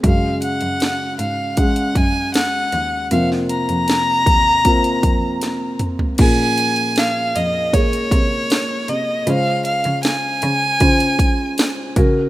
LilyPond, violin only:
\new Staff \with { instrumentName = "Violin" } { \time 4/4 \key bes \minor \tempo 4 = 78 f''8 ges''4 f''8 ges''8 aes''8 ges''4 | f''8 bes''2. r8 | aes''4 f''8 ees''8 des''4. ees''8 | f''8 f''8 aes''2~ aes''8 r8 | }